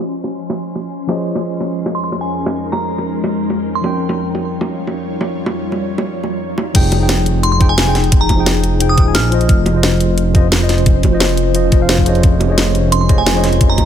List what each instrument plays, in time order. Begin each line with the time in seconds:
Already playing: ambient pad F3 C#4 C6, tine electric piano F3 F4 C5 D#5
0.24 high bongo
0.50 high bongo
0.75 high bongo
1.07 ambient pad F2 G#3 D#4 A#4, tine electric piano F3 F4 G#4 C5 C#5, high bongo
1.11 tine electric piano D#5
1.35 high bongo
1.61 high bongo
1.86 high bongo
1.95 synth bell C6
2.04 synth bell C6
2.12 high bongo
2.21 synth bell G#5
2.46 high bongo
2.72 synth bell A#5, high bongo
2.98 high bongo
3.24 high bongo
3.50 high bongo
3.75 synth bell C6
3.81 tine electric piano F3 C#4 A#4, ambient pad G3 F4 C#5, high bongo
3.86 tine electric piano G5
4.09 high bongo
4.35 high bongo
4.61 high bongo
4.87 high bongo
5.21 high bongo
5.46 high bongo
5.72 high bongo
5.98 high bongo
6.23 high bongo
6.58 high bongo
6.74 detuned saw bass F1, tine electric piano F3 D#4 G#4 G5, ambient pad D#4 G#4, kick, closed hi-hat, crash
6.92 closed hi-hat, high bongo
6.98 tine electric piano F3 D#4 G#4
7.03 tine electric piano G5
7.09 snare, closed hi-hat
7.26 closed hi-hat
7.43 synth bell C6, closed hi-hat
7.52 synth bell C6
7.59 detuned saw bass F1, tine electric piano F3 D#4 G#4 G5, kick, closed hi-hat
7.69 synth bell G#5
7.78 detuned saw bass F1, snare, closed hi-hat
7.84 tine electric piano F3 D#4 G#4
7.89 tine electric piano G5
7.95 snare, closed hi-hat
8.04 closed hi-hat
8.12 detuned saw bass F1, kick, closed hi-hat
8.21 synth bell A#5
8.29 kick, closed hi-hat, high bongo
8.36 tine electric piano F3 D#4 G#4
8.40 tine electric piano G5
8.46 snare, closed hi-hat
8.64 closed hi-hat
8.79 tine electric piano F3 D#4 G#4 G5, closed hi-hat
8.89 synth bell D#6
8.97 detuned saw bass D#1, tine electric piano F3 D#4 G#4 G5, kick, closed hi-hat
9.06 tine electric piano F3 D#4 G#4 G#5
9.15 detuned saw bass A#1, synth bell F6, snare, closed hi-hat
9.30 tine electric piano F3 F4 C5, closed hi-hat
9.34 tine electric piano D#5
9.41 closed hi-hat
9.49 detuned saw bass F1, ambient pad F3 C#4 C5, kick, closed hi-hat
9.66 closed hi-hat, high bongo
9.73 tine electric piano F3 F4 C5
9.77 tine electric piano D#5
9.83 snare, closed hi-hat
10.00 closed hi-hat
10.18 closed hi-hat
10.34 detuned saw bass F1, tine electric piano F3 F4 C5 D#5, kick, closed hi-hat
10.52 detuned saw bass F1, snare, closed hi-hat
10.59 tine electric piano F3 F4 C5
10.63 tine electric piano D#5
10.69 snare, closed hi-hat
10.78 closed hi-hat
10.86 detuned saw bass F1, kick, closed hi-hat
11.03 kick, closed hi-hat, high bongo
11.10 tine electric piano F3 F4 C5
11.15 tine electric piano D#5
11.20 snare, closed hi-hat, high bongo
11.29 closed hi-hat
11.37 closed hi-hat
11.54 tine electric piano F3 F4 C5 D#5, closed hi-hat
11.71 detuned saw bass F1, tine electric piano F3 F4 C5 D#5, kick, closed hi-hat
11.80 tine electric piano F3 F4 C5 F5
11.89 snare, closed hi-hat
11.98 kick
12.04 detuned saw bass F1, tine electric piano F3 F4 G#4 C5 C#5, ambient pad G#3 D#4 C6, closed hi-hat
12.09 tine electric piano D#5
12.15 closed hi-hat
12.23 detuned saw bass F1, kick, closed hi-hat
12.40 closed hi-hat, high bongo
12.47 tine electric piano F3 F4 G#4 C5 C#5
12.52 tine electric piano D#5
12.58 snare, closed hi-hat
12.75 closed hi-hat
12.92 synth bell C6, closed hi-hat
13.01 synth bell C6
13.08 detuned saw bass F1, tine electric piano F3 F4 G#4 C5 C#5 D#5, kick, closed hi-hat
13.18 synth bell G#5
13.26 detuned saw bass F1, snare, closed hi-hat
13.33 tine electric piano F3 F4 G#4 C5 C#5
13.37 tine electric piano D#5
13.44 snare, closed hi-hat
13.53 closed hi-hat
13.61 detuned saw bass F1, kick, closed hi-hat
13.70 synth bell A#5
13.78 kick, closed hi-hat, high bongo